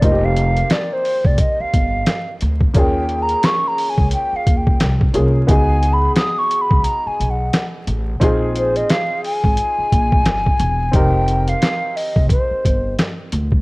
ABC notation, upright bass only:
X:1
M:4/4
L:1/16
Q:"Swing 16ths" 1/4=88
K:Fdor
V:1 name="Upright bass" clef=bass
F,,,4 z3 F,,, z2 G,,,2 z2 D,,2 | E,,4 z3 _D,, z2 E,,2 C,,2 C,,2 | _D,,4 z3 D,, z2 _C,,2 z2 =A,,,2 | B,,,4 z3 A,,, z2 B,,,2 G,,,2 =E,,,2 |
F,,,4 z3 F,,, z2 G,,,2 z2 D,,2 |]